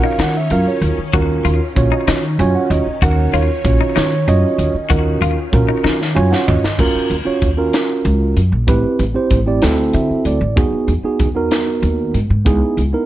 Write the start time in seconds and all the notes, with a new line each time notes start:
Already playing: D#3 C#4 F4 F#4 A#4
0.04 D#4 F5
0.19 D#3 D#4 F#5, snare, closed hi-hat
0.37 E5
0.50 F#2 C#4 F4 F#4 A#4 F5, closed hi-hat
0.68 C#5
0.81 D#2, closed hi-hat
0.98 muted upright bass stroke
1.13 D#2 C#4 F4 F#4 A#4, kick, closed hi-hat
1.45 D#2 F4, closed hi-hat
1.76 A#1 C#4 F4 F#4 C#5, kick, closed hi-hat
1.92 D#4
2.07 D#3 D#4, snare, closed hi-hat
2.39 F#2 C#4 F4 F#4 C#5 G#5, closed hi-hat
2.55 F#5
2.70 D#2 D#5, closed hi-hat
2.86 muted upright bass stroke
3.02 D#2 C#4 D#4 F#4 A#4 F#5, kick, closed hi-hat
3.33 D#2 F4 C#5, closed hi-hat
3.64 A#1 C#4 F4 F#4 C#5, kick, closed hi-hat
3.81 D#4
3.96 D#3 D#4 C#5, snare, closed hi-hat
4.28 F#2 C#4 F4 F#4 C#5 D#5, closed hi-hat
4.58 D#2, closed hi-hat
4.74 muted upright bass stroke
4.89 D#2 C#4 F4 F#4 A#4, kick, closed hi-hat
5.21 D#2 F4, closed hi-hat
5.52 A#1 C#4 F4 F#4 A#4, kick, closed hi-hat
5.69 D#4
5.84 D#3 D#4, snare
6.02 snare
6.15 F#2 C#4 F4 F#4 C#5 G#5
6.31 F#5, snare
6.48 D#2 D#5, floor tom
6.63 muted upright bass stroke, snare
6.79 D#2 C#4 F4 F#4 A#4, kick, crash
6.95 muted upright bass stroke
7.10 D#2, closed hi-hat
7.25 C#4 F4 F#4 C#5, muted upright bass stroke
7.42 D#2, kick, closed hi-hat
7.57 C#4 F4 F#4 A#4
7.73 snare, closed hi-hat
8.05 C#2, closed hi-hat
8.36 F#2, closed hi-hat
8.52 A#1
8.67 A1 C4 E4 G4 B4, kick, closed hi-hat
8.99 A1, closed hi-hat
9.14 C4 E4 G4 C5
9.31 A1, kick, closed hi-hat
9.46 C4 E4 G4 D5
9.62 D2 C4 E4 F#4 A4, snare, closed hi-hat
9.93 D3 E5, closed hi-hat
10.10 muted upright bass stroke
10.25 D2 D5, closed hi-hat
10.41 A1
10.56 E2 B3 D#4 F#4 G#4, kick, closed hi-hat
10.72 muted upright bass stroke
10.88 E2, closed hi-hat
11.03 B3 D#4 F#4 G#4, muted upright bass stroke
11.20 E2, kick, closed hi-hat
11.35 B3 D#4 F#4 A#4
11.51 snare, closed hi-hat
11.82 D#2, closed hi-hat
12.14 G#2, closed hi-hat
12.30 G#2
12.45 C#2 B3 D#4 E4 G#4, kick, closed hi-hat
12.77 C#2, closed hi-hat
12.93 B3 D#4 E4 A#4